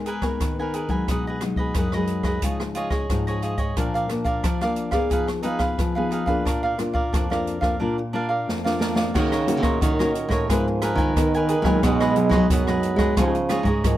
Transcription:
Already playing: G#3
0.06 G#4 A#4 B4 G#5, closed hi-hat
0.22 B3 D#4 A#4 B4 G#5, kick, cross-stick, closed hi-hat
0.40 D#3, kick, cross-stick, closed hi-hat
0.59 B3 D#4 A#4 B4 G#5
0.74 G#4 A#4 B4 G#5, closed hi-hat
0.88 F#3 G#3 D#4 A#4 B4 G#5, kick, closed hi-hat
1.08 B2 D#4 G#4 B4 D#5, kick, cross-stick, closed hi-hat
1.27 G#4 B4 D#5
1.41 F#3 G#3 D#4, muted cavaquinho stroke, cross-stick, closed hi-hat
1.56 G#4 B4 D#5, kick
1.74 F#2 D#4 G#4 B4, kick, cross-stick, closed hi-hat
1.79 D#5
1.92 F#3 G#3 D#4 B4 D#5, cross-stick
1.96 G#4
2.07 closed hi-hat
2.23 G#4 B4 D#5, kick, cross-stick
2.42 C#3 F3 G#3 D#4 F4 G#4 C#5, kick, closed hi-hat
2.46 D#5
2.60 muted cavaquinho stroke, cross-stick
2.75 F4 G#4 C#5 D#5, closed hi-hat
2.90 G#4 C#5 D#5, kick, cross-stick
3.10 G#2 F3 G#3 D#4, kick, cross-stick, closed hi-hat
3.27 G#4 C#5 D#5, closed hi-hat
3.42 F4 G#4 C#5 D#5, closed hi-hat
3.58 G#4 C#5 D#5, kick, closed hi-hat
3.77 A#2 F3 A#3 D4 A#4 D5 F5, kick, cross-stick, closed hi-hat
3.94 A#4 D5 F5, closed hi-hat
4.09 F3 A#3 D4, muted cavaquinho stroke, cross-stick, closed hi-hat
4.24 A#4 D5 F5, kick, closed hi-hat
4.43 F3 D4 A#4 D5 F5, kick, cross-stick, closed hi-hat
4.61 F3 A#3 D4 A#4 D5 F5, cross-stick, closed hi-hat
4.76 closed hi-hat
4.91 B3 D#4 G#4 A#4 D5 F5, kick, cross-stick, closed hi-hat
5.10 F3 D#4 G#4 B4 F5, kick, closed hi-hat
5.27 muted cavaquinho stroke, cross-stick, closed hi-hat
5.43 B3 D#4 G#4 B4 F5, closed hi-hat
5.59 G#4 B4 F5, kick, cross-stick, closed hi-hat
5.79 F3, kick, cross-stick, closed hi-hat
5.95 B3 D#4 G#4 B4 F5
6.11 D#4 G#4 B4 F5, closed hi-hat
6.26 A#3 D4 F4 G#4 B4 F5, kick, closed hi-hat
6.45 A#2 D4 A#4 D5 F5, kick, cross-stick, closed hi-hat
6.63 A#4 D5 F5
6.78 A#3 D4 F4, muted cavaquinho stroke, cross-stick, closed hi-hat
6.93 A#4 D5 F5, kick
7.13 F2 D4 A#4 D5 F5, kick, cross-stick, closed hi-hat
7.30 A#3 D4 F4 A#4 D5 F5, cross-stick
7.47 closed hi-hat
7.60 A#3 D4 F4 A#4 D5 F5, kick, cross-stick
7.80 A#2 A#3 D4 F4 A#4 D5 F5
7.98 muted cavaquinho stroke
8.13 A#3 D4 F4 A#4 D5 F5
8.29 A#4 D5 F5
8.48 F2, snare
8.64 A#3 D4 F4 A#4 D5 F5, snare
8.79 D4 A#4 D5 F5, snare
8.95 A#4 D5 F5, snare
9.14 C#3 D#3 A#3 C#4 F#4 A#4 C#5 D#5, kick, cross-stick, crash
9.32 A#4 C#5 D#5, cross-stick, closed hi-hat
9.47 A#3 C#4 F#4, muted cavaquinho stroke, closed hi-hat
9.61 A#2 A#4 C#5 D#5, kick, cross-stick, closed hi-hat
9.81 A#2 D#3 F#4 A#4 C#5 D#5, kick, closed hi-hat
9.99 A#3 C#4 F#4 A#4 C#5 D#5, cross-stick, closed hi-hat
10.15 closed hi-hat
10.29 A2 A#4 C#5 D#5, kick, cross-stick, closed hi-hat
10.49 G#2 F3 G#3 B3 D#4 G#4 A#4 B4 G#5, kick, cross-stick, closed hi-hat
10.68 muted cavaquinho stroke
10.82 G#4 A#4 B4 G#5, cross-stick, closed hi-hat
10.95 D#3 G#5, kick, closed hi-hat
10.99 A#4 B4
11.16 D#3 B3 D#4 A#4, kick, cross-stick, closed hi-hat
11.34 A#4 B4 G#5, closed hi-hat
11.48 G#4 A#4 B4 G#5, closed hi-hat
11.62 A#2 F#3 G#3 D#4 B4 G#5, kick, cross-stick
11.67 A#4
11.83 B2 G#3 D#4 G#4 B4 D#5, kick, cross-stick, closed hi-hat
12.00 G#4 B4 D#5, cross-stick
12.16 F#3 G#3 D#4, muted cavaquinho stroke, closed hi-hat
12.29 F#3 G#4 B4 D#5, kick, cross-stick
12.50 F#2 B2 F#3 D#4 G#4 B4 D#5, kick, closed hi-hat
12.67 F#3 G#3 D#4 G#4 B4 D#5, cross-stick
12.83 closed hi-hat
12.96 G#3 B4 D#5, kick, cross-stick, closed hi-hat
13.01 G#4
13.17 C#3 F3 G#3 D#4 F4 G#4 C#5 D#5, kick, cross-stick, closed hi-hat
13.35 muted cavaquinho stroke, closed hi-hat
13.49 F3 G#3 D#4 F4 G#4 C#5 D#5, cross-stick, closed hi-hat
13.63 G#2 D#5, kick, closed hi-hat
13.67 G#4 C#5
13.84 G#2 D#3 F3 G#3 D#4, kick, cross-stick, closed hi-hat

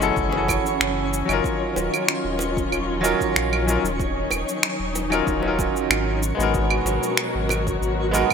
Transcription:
Already playing: F#1 E3 F#3 C#4 C#5
0.00 G#3 C#4 E4 F#4 A4, cabasa
0.16 F#1, kick, cabasa
0.29 C#4 G#4, high bongo
0.33 E4 F#4
0.37 A4
0.48 kick, high bongo, cabasa, claves
0.66 cabasa
0.80 F#1, finger snap, cabasa
1.14 cabasa
1.25 F#1 F#3 C#4 D#4, claves
1.30 F4 A#4, cabasa
1.44 D#3 F#3 C#4 F4, kick, cabasa
1.76 D#1, high bongo, cabasa
1.94 cabasa, claves
2.08 finger snap, cabasa
2.24 D#1
2.39 high bongo, cabasa
2.57 kick, cabasa
2.72 D#1, cabasa, claves
3.01 F#3 C#4 D#4 F4 A#4, high bongo, cabasa
3.21 kick, cabasa
3.35 A#1, finger snap, cabasa
3.53 claves
3.67 F#3 C#4 D#4 F4 A#4, cabasa
3.83 D#1, cabasa
4.00 D#4, kick, cabasa
4.31 D#1, high bongo, cabasa, claves
4.49 cabasa
4.63 finger snap, cabasa
4.79 D#1
4.95 high bongo, cabasa
5.10 F#3 C#4 D#4 F4 A#4, cabasa, claves
5.27 D#1, kick, cabasa
5.40 F#3 C#4, high bongo
5.44 D#4 F4 A#4
5.59 kick, high bongo, cabasa
5.76 cabasa
5.90 G#1, finger snap, cabasa, claves
6.22 B2 F#3 F#4 A#4, cabasa
6.35 G#1 G#3 B3 D#4
6.40 F#4 A#4, cabasa
6.54 kick, cabasa
6.70 claves
6.85 G#1, high bongo, cabasa
7.03 cabasa
7.17 finger snap, cabasa
7.35 G#1
7.49 high bongo, cabasa, claves
7.67 kick, cabasa
7.81 G#1, cabasa
8.11 G#3 B3 D#4 F#4 A#4, high bongo, cabasa
8.30 claves

